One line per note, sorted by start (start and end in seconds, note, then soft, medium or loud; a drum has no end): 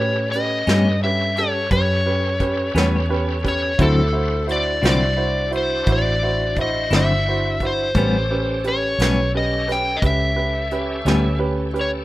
0.00 0.64 A2 medium
0.00 0.24 C#4 soft
0.00 3.75 C#4 medium
0.00 0.24 G4 soft
0.00 3.76 G4 medium
0.00 3.75 A4 medium
0.00 0.24 B4 soft
0.00 3.75 B4 medium
0.00 0.31 C#5 medium
0.32 0.59 C#4 soft
0.32 0.60 G4 soft
0.32 0.60 B4 soft
0.32 1.03 D#5 medium
0.32 closed hi-hat soft
0.67 1.68 G2 medium
0.67 0.89 A2 soft
0.67 0.89 G3 medium
0.67 0.88 B3 medium
0.67 0.88 C#4 medium
0.67 0.93 C#4 soft
0.67 0.93 G4 soft
0.67 0.94 B4 medium
0.67 snare medium
0.67 closed hi-hat medium
1.04 1.28 C#4 soft
1.04 1.29 G4 soft
1.04 1.29 B4 soft
1.04 1.38 E5 medium
1.37 1.63 C#4 soft
1.37 1.63 G4 soft
1.37 1.63 A4 medium
1.37 1.69 C#5 medium
1.37 snare soft
1.37 closed hi-hat soft
1.71 2.72 F#2 medium
1.71 1.97 C#4 soft
1.71 1.97 G4 soft
1.71 1.98 B4 medium
1.71 3.47 C#5 medium
1.71 kick medium
1.71 closed hi-hat medium
2.06 2.32 C#4 soft
2.06 2.32 G4 soft
2.06 2.32 B4 soft
2.40 2.66 C#4 soft
2.40 2.66 G4 soft
2.40 2.66 B4 medium
2.40 kick medium
2.40 closed hi-hat soft
2.74 3.76 E2 medium
2.74 2.97 A2 medium
2.74 2.97 G3 medium
2.74 2.96 B3 medium
2.74 3.00 C#4 medium
2.74 2.96 C#4 medium
2.74 3.01 G4 medium
2.74 3.01 B4 medium
2.74 snare medium
2.74 closed hi-hat medium
3.09 3.35 C#4 medium
3.09 3.36 G4 medium
3.09 3.36 B4 medium
3.44 3.70 C#4 soft
3.44 3.70 G4 soft
3.44 3.70 B4 medium
3.44 kick medium
3.44 closed hi-hat medium
3.48 3.82 C#5 medium
3.78 4.80 D2 medium
3.78 4.00 D3 medium
3.78 4.00 F#3 medium
3.78 4.00 C4 medium
3.78 7.90 D4 medium
3.78 4.04 E4 medium
3.78 7.90 E4 medium
3.78 4.01 E4 medium
3.78 4.04 F#4 medium
3.78 7.90 F#4 medium
3.78 4.46 A4 medium
3.78 7.90 C5 medium
3.78 4.05 C5 medium
3.78 kick loud
3.78 closed hi-hat medium
4.12 4.39 E4 soft
4.12 4.39 F#4 soft
4.12 4.39 C5 medium
4.47 4.73 E4 soft
4.47 4.74 F#4 soft
4.47 4.74 C5 soft
4.47 closed hi-hat medium
4.52 4.86 D5 medium
4.82 5.83 C2 medium
4.82 5.04 D3 soft
4.82 5.04 F#3 soft
4.82 5.03 C4 medium
4.82 5.03 E4 medium
4.82 5.09 E4 soft
4.82 5.09 F#4 soft
4.82 5.09 C5 medium
4.82 snare medium
4.82 closed hi-hat medium
4.88 5.51 D5 medium
5.17 5.43 E4 medium
5.17 5.43 F#4 soft
5.17 5.44 C5 medium
5.51 5.77 E4 soft
5.51 5.78 F#4 soft
5.51 5.78 C5 medium
5.51 closed hi-hat soft
5.57 5.90 C5 medium
5.86 6.88 A1 medium
5.86 6.12 E4 soft
5.86 6.13 F#4 soft
5.86 6.13 C5 medium
5.86 kick medium
5.86 closed hi-hat medium
5.92 6.61 D5 medium
6.23 6.48 E4 soft
6.23 6.48 F#4 soft
6.23 6.48 C5 soft
6.56 6.83 E4 medium
6.56 6.83 F#4 soft
6.56 6.83 C5 medium
6.56 kick medium
6.56 closed hi-hat soft
6.61 6.94 D#5 medium
6.90 7.91 G1 medium
6.90 7.13 D3 medium
6.90 7.12 F#3 medium
6.90 7.12 C4 medium
6.90 7.11 E4 medium
6.90 7.17 E4 soft
6.90 7.18 F#4 soft
6.90 7.18 C5 medium
6.90 snare medium
6.90 closed hi-hat medium
6.96 7.64 E5 medium
7.28 7.53 E4 soft
7.28 7.53 F#4 soft
7.28 7.53 C5 medium
7.60 7.87 E4 medium
7.60 7.87 F#4 soft
7.60 7.87 C5 medium
7.60 kick medium
7.60 closed hi-hat soft
7.67 8.68 C5 medium
7.94 8.95 A1 medium
7.94 8.15 A2 medium
7.94 8.16 G3 medium
7.94 8.16 B3 medium
7.94 8.21 C#4 medium
7.94 12.05 C#4 medium
7.94 8.17 C#4 medium
7.94 8.21 G4 soft
7.94 12.05 G4 medium
7.94 12.05 A4 medium
7.94 8.22 B4 medium
7.94 kick medium
7.94 closed hi-hat medium
8.30 8.56 C#4 soft
8.30 8.56 G4 soft
8.30 8.56 B4 soft
8.64 8.90 C#4 soft
8.64 8.90 G4 soft
8.64 8.91 B4 soft
8.64 closed hi-hat medium
8.68 9.31 C#5 medium
8.99 9.99 B1 medium
8.99 9.21 A2 soft
8.99 9.21 G3 soft
8.99 9.20 B3 medium
8.99 9.25 C#4 soft
8.99 9.20 C#4 medium
8.99 9.25 G4 soft
8.99 9.25 B4 medium
8.99 snare medium
8.99 closed hi-hat medium
9.34 9.59 C#4 soft
9.34 9.60 G4 soft
9.34 9.60 B4 soft
9.34 9.70 D#5 medium
9.68 9.94 C#4 soft
9.68 9.94 G4 soft
9.68 9.94 B4 medium
9.68 9.98 G5 medium
9.68 snare soft
9.68 closed hi-hat soft
9.97 10.03 D#5 medium
10.02 11.02 C#2 medium
10.02 10.28 C#4 soft
10.02 10.28 G4 soft
10.02 10.28 B4 soft
10.02 kick medium
10.02 closed hi-hat medium
10.06 11.38 E5 medium
10.36 10.62 C#4 soft
10.36 10.62 G4 soft
10.36 10.62 B4 medium
10.71 10.97 C#4 soft
10.71 10.97 G4 soft
10.71 10.98 B4 medium
10.71 closed hi-hat soft
11.05 12.05 D2 medium
11.05 11.27 A2 medium
11.05 11.27 G3 medium
11.05 11.27 B3 medium
11.05 11.26 C#4 medium
11.05 11.32 C#4 medium
11.05 11.32 G4 soft
11.05 11.32 B4 medium
11.05 snare medium
11.05 closed hi-hat medium
11.39 11.65 C#4 medium
11.39 11.66 G4 medium
11.39 11.66 B4 medium
11.74 12.00 C#4 soft
11.74 12.00 G4 soft
11.74 12.00 B4 medium
11.74 closed hi-hat soft
11.81 11.90 C#5 medium